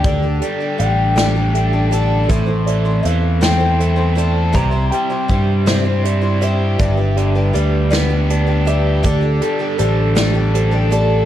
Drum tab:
HH |xxxxxx|xxxxxx|xxxxxx|xxxxxx|
SD |---o--|---o--|---o--|---o--|
BD |o-----|o-----|o-o---|o-----|

HH |xxxxxx|
SD |---o--|
BD |o-----|